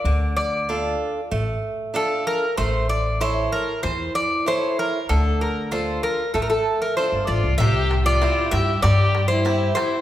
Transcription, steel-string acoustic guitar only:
\new Staff \with { instrumentName = "Steel-string acoustic guitar" } { \time 4/4 \key d \minor \tempo 4 = 96 d4 <d' f' a'>4 a4 <d' f' a'>4 | a4 <e' a' cis''>4 e4 <e' a' cis''>4 | d4 <d' f' a'>4 a4 <d' f' a'>4 | c4 <c' e' g'>4 g4 <c' e' g'>4 | }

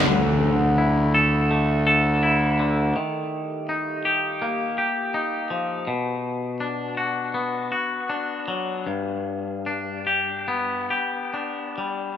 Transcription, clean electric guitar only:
\new Staff \with { instrumentName = "Clean electric guitar" } { \time 4/4 \key d \major \tempo 4 = 82 d4 e'8 a'8 a8 a'8 e'8 d8 | ees4 ees'8 g'8 bes8 g'8 ees'8 f8 | b,4 d'8 fis'8 b8 fis'8 d'8 fis8 | g,4 d'8 g'8 b8 g'8 d'8 g8 | }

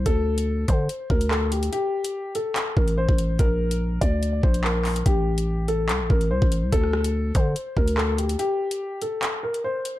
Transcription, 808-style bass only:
\new Staff \with { instrumentName = "808-style bass" } { \clef bass \time 4/4 \key d \minor \tempo 4 = 144 d,4. d8 r8 d,4. | r2 r8 a,,8. a,,8. | bes,,4. d,4 bes,,4. | a,,2 c,16 a,,16 a,,8 c,16 a,,8 c,16 |
d,4. d8 r8 d,4. | r1 | }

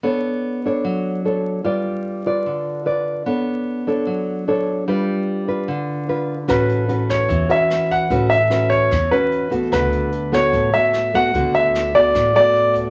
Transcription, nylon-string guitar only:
\new Staff \with { instrumentName = "Nylon-string guitar" } { \time 4/4 \key a \major \tempo 4 = 149 << { <d' a' cis''>4. <d' a' cis''>4. <d' a' cis''>4 | <f' b' d''>4. <f' b' d''>4. <f' b' d''>4 | <d' a' cis''>4. <d' a' cis''>4. <d' a' cis''>4 | <d' f' b'>4. <d' f' b'>4. <d' f' b'>8 r8 |
<cis' fis' b'>4 <cis' fis' b'>4. <cis' fis' b'>4. | <cis' fis' b'>8 r8 <cis' fis' b'>4 r8 <cis' fis' b'>4 <a b fis'>8~ | <a b fis'>4 r8 <a b fis'>4 <a b fis'>4 <a b fis'>8 | <a b fis'>4. <a b fis'>4 <a b fis'>4. | } \\ { b2 fis2 | g2 d2 | b2 fis2 | g2 d2 |
a2 e2 | a2 e2 | d2 a,2 | d2 a,2 | } >> }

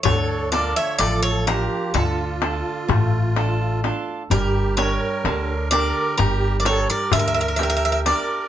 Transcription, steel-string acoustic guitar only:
\new Staff \with { instrumentName = "Steel-string acoustic guitar" } { \time 9/8 \key d \minor \tempo 4. = 42 d8 <d' f' a'>8 f8 <d' f'>8 d8 <d' f' a'>8 a8 <d' f' a'>8 <d' f' a'>8 | g8 <d' g' bes'>8 d8 <d' g' bes'>8 g8 <d' g' bes'>8 d8 <d' g' bes'>8 <d' g' bes'>8 | }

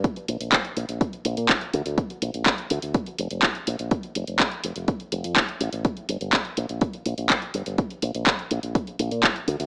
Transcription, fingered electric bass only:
\new Staff \with { instrumentName = "Fingered electric bass" } { \clef bass \time 4/4 \key bes \major \tempo 4 = 124 r8 bes,,16 bes,,16 r8 bes,,16 bes,,16 r8 bes,,16 bes,16 r8 d,16 d,16 | r8 bes,,16 bes,,16 r8 d,16 d,16 r8 f,,16 f,,16 r8 bes,,16 bes,,16 | r8 f,,16 f,,16 r8 f,,16 f,,16 r8 f,,16 f,16 r8 a,,16 a,,16 | r8 g,,16 g,,16 r8 bes,,16 bes,,16 r8 bes,,16 bes,,16 r8 g,,16 g,,16 |
r8 bes,,16 bes,,16 r8 bes,,16 bes,,16 r8 bes,,16 bes,16 r8 d,16 d,16 | }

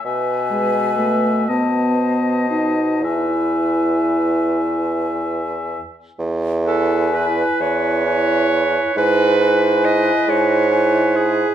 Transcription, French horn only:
\new Staff \with { instrumentName = "French horn" } { \time 6/8 \key e \major \tempo 4. = 42 r8 gis8 a8 b4 dis'8 | e'2~ e'8 r8 | r8 e'4. e'4 | e'8 e'4. e'4 | }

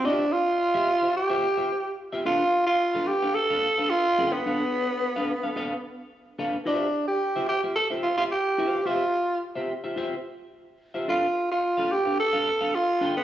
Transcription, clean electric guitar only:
\new Staff \with { instrumentName = "Clean electric guitar" } { \time 4/4 \key g \mixolydian \tempo 4 = 109 <f' g' c'' e''>16 r4 <f' g' c'' e''>16 r16 <f' g' c'' e''>16 r16 <f' g' c'' e''>16 r16 <f' g' c'' e''>16 r8. <f' g' c'' e''>16 | <d' a' b' f''>16 r4 <d' a' b' f''>16 r16 <d' a' b' f''>16 r16 <d' a' b' f''>16 r16 <d' a' b' f''>16 r8 <d' a' b' g''>16 r16 | <d' a' b' f''>16 r4 <d' a' b' f''>16 r16 <d' a' b' f''>16 <d' a' b' f''>16 r4 r16 <d' a' b' f''>16 r16 | <f' g' c'' e''>16 r4 <f' g' c'' e''>16 r16 <f' g' c'' e''>16 r16 <f' g' c'' e''>16 r16 <f' g' c'' e''>16 r8 <f' g' c'' f''>16 r16 |
<f' g' c'' e''>16 r4 <f' g' c'' e''>16 r16 <f' g' c'' e''>16 <f' g' c'' e''>16 r4. <f' g' c'' e''>16 | <d' a' b' f''>16 r4 <d' a' b' f''>16 r16 <d' a' b' f''>16 r16 <d' a' b' f''>16 r16 <d' a' b' f''>16 r8 <d' a' b' g''>16 r16 | }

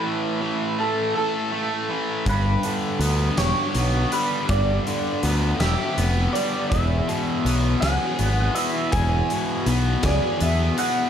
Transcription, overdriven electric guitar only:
\new Staff \with { instrumentName = "Overdriven electric guitar" } { \time 6/8 \key g \lydian \tempo 4. = 54 <a, e a a'>8 e8 a8 a'8 a8 e8 | g,8 d8 b8 g'8 b8 g8 | g,8 d8 b8 g'8 b8 g8 | e,8 b,8 b8 gis'8 b8 e8 |
e,8 b,8 b8 gis'8 b8 e8 | }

